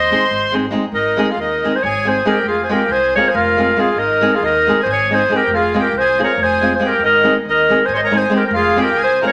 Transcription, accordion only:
0, 0, Header, 1, 2, 480
1, 0, Start_track
1, 0, Key_signature, -4, "major"
1, 0, Tempo, 433526
1, 1029, Time_signature, 7, 3, 24, 8
1, 10320, End_track
2, 0, Start_track
2, 0, Title_t, "Accordion"
2, 0, Program_c, 0, 21
2, 0, Note_on_c, 0, 72, 105
2, 601, Note_off_c, 0, 72, 0
2, 1041, Note_on_c, 0, 63, 76
2, 1399, Note_off_c, 0, 63, 0
2, 1440, Note_on_c, 0, 65, 61
2, 1542, Note_off_c, 0, 65, 0
2, 1550, Note_on_c, 0, 63, 69
2, 1905, Note_off_c, 0, 63, 0
2, 1947, Note_on_c, 0, 68, 52
2, 2033, Note_off_c, 0, 68, 0
2, 2050, Note_on_c, 0, 68, 92
2, 2295, Note_off_c, 0, 68, 0
2, 2317, Note_on_c, 0, 68, 74
2, 2517, Note_off_c, 0, 68, 0
2, 2536, Note_on_c, 0, 67, 74
2, 2734, Note_off_c, 0, 67, 0
2, 2737, Note_on_c, 0, 65, 76
2, 2913, Note_on_c, 0, 68, 54
2, 2922, Note_off_c, 0, 65, 0
2, 2984, Note_off_c, 0, 68, 0
2, 3011, Note_on_c, 0, 67, 66
2, 3217, Note_on_c, 0, 68, 78
2, 3226, Note_off_c, 0, 67, 0
2, 3496, Note_off_c, 0, 68, 0
2, 3514, Note_on_c, 0, 70, 74
2, 3635, Note_on_c, 0, 68, 59
2, 3649, Note_off_c, 0, 70, 0
2, 3710, Note_on_c, 0, 65, 84
2, 3711, Note_off_c, 0, 68, 0
2, 4181, Note_off_c, 0, 65, 0
2, 4201, Note_on_c, 0, 65, 72
2, 4400, Note_on_c, 0, 63, 72
2, 4407, Note_off_c, 0, 65, 0
2, 4788, Note_off_c, 0, 63, 0
2, 4810, Note_on_c, 0, 65, 63
2, 4898, Note_on_c, 0, 63, 82
2, 4910, Note_off_c, 0, 65, 0
2, 5287, Note_off_c, 0, 63, 0
2, 5311, Note_on_c, 0, 68, 58
2, 5403, Note_off_c, 0, 68, 0
2, 5421, Note_on_c, 0, 68, 90
2, 5644, Note_off_c, 0, 68, 0
2, 5686, Note_on_c, 0, 68, 80
2, 5881, Note_off_c, 0, 68, 0
2, 5922, Note_on_c, 0, 67, 80
2, 6105, Note_off_c, 0, 67, 0
2, 6134, Note_on_c, 0, 65, 77
2, 6382, Note_off_c, 0, 65, 0
2, 6412, Note_on_c, 0, 67, 78
2, 6590, Note_off_c, 0, 67, 0
2, 6638, Note_on_c, 0, 68, 91
2, 6883, Note_off_c, 0, 68, 0
2, 6908, Note_on_c, 0, 70, 76
2, 7087, Note_off_c, 0, 70, 0
2, 7112, Note_on_c, 0, 68, 93
2, 7474, Note_off_c, 0, 68, 0
2, 7491, Note_on_c, 0, 68, 49
2, 7537, Note_off_c, 0, 68, 0
2, 7576, Note_on_c, 0, 67, 76
2, 7769, Note_off_c, 0, 67, 0
2, 7785, Note_on_c, 0, 63, 78
2, 8129, Note_off_c, 0, 63, 0
2, 8279, Note_on_c, 0, 63, 80
2, 8625, Note_off_c, 0, 63, 0
2, 8685, Note_on_c, 0, 68, 60
2, 8771, Note_off_c, 0, 68, 0
2, 8790, Note_on_c, 0, 68, 96
2, 8801, Note_on_c, 0, 72, 77
2, 8831, Note_off_c, 0, 68, 0
2, 8868, Note_off_c, 0, 72, 0
2, 8900, Note_on_c, 0, 70, 87
2, 9012, Note_off_c, 0, 70, 0
2, 9035, Note_on_c, 0, 68, 87
2, 9230, Note_off_c, 0, 68, 0
2, 9245, Note_on_c, 0, 67, 68
2, 9335, Note_off_c, 0, 67, 0
2, 9352, Note_on_c, 0, 67, 71
2, 9410, Note_off_c, 0, 67, 0
2, 9451, Note_on_c, 0, 65, 93
2, 9715, Note_off_c, 0, 65, 0
2, 9725, Note_on_c, 0, 67, 80
2, 9924, Note_on_c, 0, 68, 92
2, 9935, Note_off_c, 0, 67, 0
2, 10181, Note_off_c, 0, 68, 0
2, 10210, Note_on_c, 0, 70, 79
2, 10320, Note_off_c, 0, 70, 0
2, 10320, End_track
0, 0, End_of_file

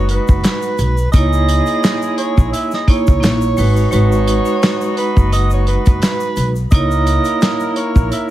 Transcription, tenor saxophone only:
0, 0, Header, 1, 2, 480
1, 0, Start_track
1, 0, Tempo, 697674
1, 782, Time_signature, 4, 2, 24, 8
1, 5713, End_track
2, 0, Start_track
2, 0, Title_t, "Tenor saxophone"
2, 0, Program_c, 0, 66
2, 68, Note_on_c, 0, 71, 89
2, 757, Note_off_c, 0, 71, 0
2, 769, Note_on_c, 0, 75, 114
2, 1468, Note_off_c, 0, 75, 0
2, 1496, Note_on_c, 0, 73, 86
2, 1715, Note_off_c, 0, 73, 0
2, 1736, Note_on_c, 0, 76, 82
2, 1857, Note_off_c, 0, 76, 0
2, 1886, Note_on_c, 0, 75, 79
2, 1978, Note_off_c, 0, 75, 0
2, 1988, Note_on_c, 0, 73, 94
2, 2678, Note_off_c, 0, 73, 0
2, 2695, Note_on_c, 0, 73, 99
2, 3391, Note_off_c, 0, 73, 0
2, 3425, Note_on_c, 0, 71, 83
2, 3640, Note_off_c, 0, 71, 0
2, 3665, Note_on_c, 0, 75, 84
2, 3782, Note_off_c, 0, 75, 0
2, 3807, Note_on_c, 0, 73, 75
2, 3899, Note_off_c, 0, 73, 0
2, 3907, Note_on_c, 0, 71, 91
2, 4501, Note_off_c, 0, 71, 0
2, 4618, Note_on_c, 0, 75, 108
2, 5312, Note_off_c, 0, 75, 0
2, 5341, Note_on_c, 0, 73, 84
2, 5557, Note_off_c, 0, 73, 0
2, 5590, Note_on_c, 0, 76, 78
2, 5705, Note_off_c, 0, 76, 0
2, 5713, End_track
0, 0, End_of_file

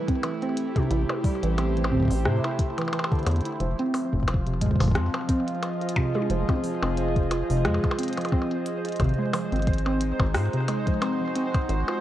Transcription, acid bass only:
0, 0, Header, 1, 2, 480
1, 0, Start_track
1, 0, Tempo, 674157
1, 645, Time_signature, 4, 2, 24, 8
1, 8548, End_track
2, 0, Start_track
2, 0, Title_t, "Acid bass"
2, 0, Program_c, 0, 38
2, 645, Note_on_c, 0, 33, 99
2, 751, Note_off_c, 0, 33, 0
2, 1020, Note_on_c, 0, 33, 79
2, 1454, Note_off_c, 0, 33, 0
2, 1500, Note_on_c, 0, 33, 88
2, 1605, Note_on_c, 0, 45, 87
2, 1616, Note_off_c, 0, 33, 0
2, 1711, Note_off_c, 0, 45, 0
2, 2325, Note_on_c, 0, 40, 92
2, 2431, Note_off_c, 0, 40, 0
2, 2565, Note_on_c, 0, 29, 95
2, 2671, Note_off_c, 0, 29, 0
2, 2940, Note_on_c, 0, 29, 79
2, 3374, Note_off_c, 0, 29, 0
2, 3420, Note_on_c, 0, 29, 88
2, 3525, Note_on_c, 0, 41, 86
2, 3536, Note_off_c, 0, 29, 0
2, 3631, Note_off_c, 0, 41, 0
2, 4486, Note_on_c, 0, 29, 100
2, 4591, Note_off_c, 0, 29, 0
2, 4860, Note_on_c, 0, 29, 80
2, 5294, Note_off_c, 0, 29, 0
2, 5340, Note_on_c, 0, 29, 88
2, 5446, Note_on_c, 0, 41, 86
2, 5456, Note_off_c, 0, 29, 0
2, 5551, Note_off_c, 0, 41, 0
2, 6405, Note_on_c, 0, 32, 99
2, 6511, Note_off_c, 0, 32, 0
2, 6780, Note_on_c, 0, 32, 80
2, 7214, Note_off_c, 0, 32, 0
2, 7260, Note_on_c, 0, 32, 89
2, 7365, Note_on_c, 0, 44, 86
2, 7376, Note_off_c, 0, 32, 0
2, 7471, Note_off_c, 0, 44, 0
2, 8325, Note_on_c, 0, 32, 97
2, 8431, Note_off_c, 0, 32, 0
2, 8548, End_track
0, 0, End_of_file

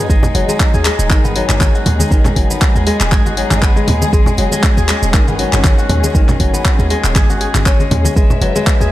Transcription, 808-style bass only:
0, 0, Header, 1, 2, 480
1, 0, Start_track
1, 0, Key_signature, 5, "minor"
1, 0, Tempo, 504202
1, 92, Time_signature, 4, 2, 24, 8
1, 8490, End_track
2, 0, Start_track
2, 0, Title_t, "808-style bass"
2, 0, Program_c, 0, 38
2, 92, Note_on_c, 0, 32, 102
2, 176, Note_off_c, 0, 32, 0
2, 332, Note_on_c, 0, 30, 106
2, 416, Note_off_c, 0, 30, 0
2, 704, Note_on_c, 0, 39, 82
2, 849, Note_off_c, 0, 39, 0
2, 943, Note_on_c, 0, 27, 93
2, 1052, Note_on_c, 0, 32, 100
2, 1066, Note_off_c, 0, 27, 0
2, 1348, Note_off_c, 0, 32, 0
2, 1422, Note_on_c, 0, 32, 88
2, 1709, Note_off_c, 0, 32, 0
2, 1771, Note_on_c, 0, 39, 96
2, 1933, Note_off_c, 0, 39, 0
2, 2012, Note_on_c, 0, 32, 101
2, 2096, Note_off_c, 0, 32, 0
2, 2251, Note_on_c, 0, 30, 107
2, 2336, Note_off_c, 0, 30, 0
2, 2621, Note_on_c, 0, 39, 86
2, 2768, Note_off_c, 0, 39, 0
2, 2862, Note_on_c, 0, 27, 92
2, 2971, Note_on_c, 0, 32, 105
2, 2985, Note_off_c, 0, 27, 0
2, 3267, Note_off_c, 0, 32, 0
2, 3341, Note_on_c, 0, 32, 88
2, 3629, Note_off_c, 0, 32, 0
2, 3690, Note_on_c, 0, 39, 93
2, 3853, Note_off_c, 0, 39, 0
2, 3931, Note_on_c, 0, 32, 103
2, 4016, Note_off_c, 0, 32, 0
2, 4172, Note_on_c, 0, 30, 106
2, 4256, Note_off_c, 0, 30, 0
2, 4545, Note_on_c, 0, 39, 84
2, 4690, Note_off_c, 0, 39, 0
2, 4784, Note_on_c, 0, 27, 91
2, 4893, Note_on_c, 0, 32, 99
2, 4907, Note_off_c, 0, 27, 0
2, 5188, Note_off_c, 0, 32, 0
2, 5264, Note_on_c, 0, 32, 84
2, 5550, Note_off_c, 0, 32, 0
2, 5613, Note_on_c, 0, 39, 92
2, 5774, Note_off_c, 0, 39, 0
2, 5853, Note_on_c, 0, 32, 100
2, 5937, Note_off_c, 0, 32, 0
2, 6092, Note_on_c, 0, 30, 105
2, 6176, Note_off_c, 0, 30, 0
2, 6465, Note_on_c, 0, 39, 87
2, 6610, Note_off_c, 0, 39, 0
2, 6704, Note_on_c, 0, 27, 92
2, 6813, Note_on_c, 0, 32, 99
2, 6828, Note_off_c, 0, 27, 0
2, 7109, Note_off_c, 0, 32, 0
2, 7184, Note_on_c, 0, 32, 87
2, 7470, Note_off_c, 0, 32, 0
2, 7532, Note_on_c, 0, 39, 94
2, 7694, Note_off_c, 0, 39, 0
2, 7773, Note_on_c, 0, 32, 101
2, 7857, Note_off_c, 0, 32, 0
2, 8009, Note_on_c, 0, 30, 109
2, 8095, Note_off_c, 0, 30, 0
2, 8383, Note_on_c, 0, 39, 85
2, 8490, Note_off_c, 0, 39, 0
2, 8490, End_track
0, 0, End_of_file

